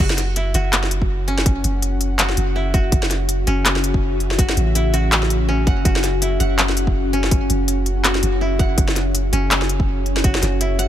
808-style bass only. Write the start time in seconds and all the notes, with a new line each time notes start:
0.00 F#1
0.55 F#1
1.64 F#1
2.38 F#1
2.92 F#1
3.47 F#1
4.57 A1
5.67 F#1
5.85 F#1
6.40 F#1
7.50 F#1
8.23 F#1
8.78 F#1
9.33 F#1
10.43 F#1